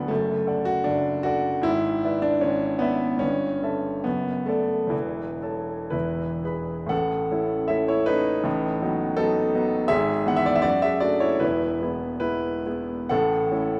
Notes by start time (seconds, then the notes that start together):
Already playing: D1 D2 B3 D4 B4 D5 F#5
0.08 F#1 F#2 A3
0.47 A4 D5 F#5
0.65 F#4
0.84 F#1 F#2 D4
1.23 F#4 A4 D5 F#5
1.62 G#1 G#2 E4
2.05 B4 D5 E5
2.22 D4
2.41 G#1 G#2 C#4
2.79 B3 B4 D5 E5
3.17 G2 C#4
3.21 G1
3.63 A4 E5 A5
4.04 F#1 F#2 B3
4.46 A3 A4 D5 A5
4.87 E2 E3
4.92 E1
5.42 A4 C#5 A5
5.90 E1 E2 E4 B4
6.44 G#4 B4 B5
6.86 A1 A2 A4 F#5
7.31 A3 C#4 E4
7.68 A3 C#4 E4 A4 E5
7.88 E4 C#5
8.06 A3 C#4 D#4 E4 B4
8.44 A1 A2
8.82 F#3 B3 D#4
9.17 F#3 B3 D#4 A4
9.55 F#3 B3 D#4
9.88 G#1 G#2 G#4 E5
10.26 E3 B3 F#5
10.37 E5
10.46 D5
10.56 E5
10.62 F#2 F#4 D5
10.82 G#4 E5
11.00 F#3 A3 D4 F#4 D5
11.20 E4 C#5
11.40 E1 E2 E4 B4
11.82 G#3 B3 E4
12.20 G#3 B3 E4 B4
12.66 G#3 B3 E4
13.09 A1 A2 A4 F#5
13.51 A3 C#4 E4